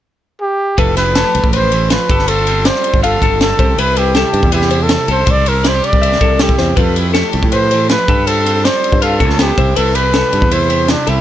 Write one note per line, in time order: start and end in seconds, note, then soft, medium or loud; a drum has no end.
0.41 0.80 G4 medium
0.78 1.22 F1 medium
0.78 1.72 F3 medium
0.78 1.15 A3 soft
0.78 0.96 E4 soft
0.78 1.16 G4 soft
0.78 0.96 A4 medium
0.78 1.15 B4 medium
0.78 kick medium
0.78 ride medium
0.97 1.15 E4 soft
0.97 1.49 B4 medium
0.97 snare soft
0.97 ride medium
1.15 2.10 A3 medium
1.15 1.24 E4 soft
1.15 1.53 A4 medium
1.15 snare loud
1.15 ride medium
1.24 2.09 G4 soft
1.35 1.42 C2 medium
1.35 ride medium
1.44 1.96 A1 medium
1.44 kick medium
1.53 1.73 B4 medium
1.53 1.92 C5 medium
1.53 ride medium
1.72 1.91 E3 medium
1.72 2.10 C5 medium
1.72 ride soft
1.90 2.10 F3 soft
1.90 2.30 B4 medium
1.90 snare medium
1.90 ride medium
2.10 2.69 G1 medium
2.10 3.97 G3 medium
2.10 2.28 A4 medium
2.10 5.11 A4 medium
2.10 kick medium
2.10 ride medium
2.19 snare soft
2.28 2.48 F4 soft
2.28 2.68 A4 medium
2.28 2.65 C5 medium
2.28 ride medium
2.47 3.79 C4 medium
2.47 3.03 F4 soft
2.47 ride soft
2.65 3.03 C5 medium
2.65 3.03 D5 medium
2.65 snare medium
2.65 ride medium
2.75 snare soft
2.84 ride soft
2.94 3.16 G1 medium
2.94 kick medium
3.03 3.59 D3 medium
3.03 3.22 F4 soft
3.03 3.38 A4 medium
3.03 3.22 F5 medium
3.03 ride medium
3.22 3.52 G1 medium
3.22 3.58 F4 medium
3.22 3.59 A4 medium
3.22 kick medium
3.22 ride soft
3.41 3.81 A4 medium
3.41 snare medium
3.41 ride medium
3.59 3.74 C2 medium
3.59 4.53 C3 medium
3.59 5.15 G4 medium
3.59 3.78 C5 medium
3.59 kick medium
3.59 ride soft
3.78 4.23 C2 medium
3.78 3.98 E4 medium
3.78 4.16 B4 medium
3.78 3.99 B4 medium
3.78 ride medium
3.97 5.66 G3 medium
3.97 4.54 E4 medium
3.97 4.54 G4 medium
3.97 ride soft
4.15 4.52 A4 medium
4.15 snare medium
4.15 ride medium
4.33 4.41 G2 medium
4.33 ride medium
4.43 4.95 E2 medium
4.43 kick medium
4.52 5.07 C3 medium
4.52 4.72 E4 medium
4.52 4.84 G4 medium
4.52 4.71 B4 medium
4.52 ride medium
4.62 snare soft
4.71 5.48 E4 soft
4.71 5.08 C5 medium
4.71 ride medium
4.83 5.10 A4 medium
4.89 snare medium
4.89 ride medium
5.08 5.23 C2 medium
5.08 5.27 C3 medium
5.08 5.26 A4 medium
5.08 5.29 A4 medium
5.08 5.32 C5 medium
5.08 ride medium
5.26 5.79 C2 medium
5.26 6.21 C3 medium
5.26 8.09 A4 medium
5.26 5.65 C5 medium
5.26 kick loud
5.26 ride medium
5.31 5.50 D5 medium
5.46 5.65 E4 soft
5.46 5.69 A#4 medium
5.46 ride medium
5.64 7.16 G3 soft
5.64 5.75 E4 soft
5.64 6.01 D5 medium
5.64 snare loud
5.64 ride medium
5.68 5.86 C5 medium
5.75 6.78 G4 soft
5.84 6.43 D5 medium
5.84 ride soft
5.93 6.15 C2 medium
5.93 kick medium
6.02 6.21 E5 medium
6.02 ride medium
6.12 snare soft
6.21 6.51 C2 medium
6.21 6.76 C3 soft
6.21 6.40 E4 soft
6.21 6.58 A4 medium
6.21 kick medium
6.21 ride soft
6.39 6.76 E4 soft
6.39 6.78 G4 medium
6.39 snare medium
6.39 ride medium
6.49 kick medium
6.58 6.74 E2 medium
6.58 6.76 C5 medium
6.58 snare soft
6.76 7.22 F2 medium
6.76 7.72 F3 medium
6.76 7.17 G4 soft
6.76 6.96 A4 medium
6.76 7.13 B4 medium
6.76 kick medium
6.76 ride medium
6.96 8.07 E4 soft
6.96 ride medium
7.14 8.08 A3 medium
7.14 8.12 G4 soft
7.14 7.52 A4 medium
7.14 snare medium
7.14 ride medium
7.33 7.41 C2 medium
7.33 ride soft
7.43 7.95 A2 medium
7.43 kick medium
7.52 7.71 B4 medium
7.52 7.88 C5 medium
7.52 ride medium
7.71 7.89 E3 medium
7.71 8.08 C5 medium
7.71 ride medium
7.89 8.09 F3 soft
7.89 8.28 B4 medium
7.89 snare medium
7.89 ride medium
8.08 8.68 G2 medium
8.08 9.20 G3 medium
8.08 8.27 A4 medium
8.08 11.08 A4 medium
8.08 kick medium
8.08 ride soft
8.27 8.45 F4 soft
8.27 8.66 A4 medium
8.27 8.65 C5 medium
8.27 ride medium
8.46 9.59 C4 medium
8.46 9.02 F4 soft
8.46 ride medium
8.64 9.04 C5 medium
8.64 9.01 D5 medium
8.64 snare medium
8.64 ride medium
8.84 ride soft
8.92 9.22 G2 medium
8.92 kick medium
9.02 9.57 F4 soft
9.02 9.40 A4 medium
9.02 9.21 F5 medium
9.02 ride medium
9.20 9.50 C#2 medium
9.20 9.40 A3 medium
9.20 9.58 A4 medium
9.20 kick medium
9.20 ride soft
9.30 snare soft
9.39 9.59 B3 soft
9.39 9.78 G4 medium
9.39 snare medium
9.39 ride medium
9.58 9.73 C2 medium
9.58 10.51 C3 medium
9.58 9.77 E4 soft
9.58 9.76 C5 medium
9.58 kick medium
9.58 ride soft
9.76 10.22 C2 medium
9.76 10.52 E4 medium
9.76 9.97 A4 medium
9.76 10.13 B4 medium
9.76 ride medium
9.95 11.08 G3 medium
9.95 10.69 G4 soft
9.95 10.54 B4 medium
9.95 ride medium
10.14 10.51 A4 medium
10.14 snare medium
10.14 ride medium
10.33 10.41 G2 medium
10.33 ride soft
10.42 10.94 E2 medium
10.42 kick medium
10.51 11.06 C3 medium
10.51 11.06 E4 soft
10.51 10.70 B4 medium
10.51 10.92 C5 medium
10.51 ride medium
10.70 11.06 G4 soft
10.70 11.06 C5 medium
10.70 ride soft
10.88 11.10 D4 medium
10.88 snare medium
10.88 ride medium
11.07 11.21 C2 medium
11.07 11.21 C3 medium
11.07 11.21 G3 medium
11.07 11.21 E4 medium
11.07 11.21 A4 medium
11.07 ride medium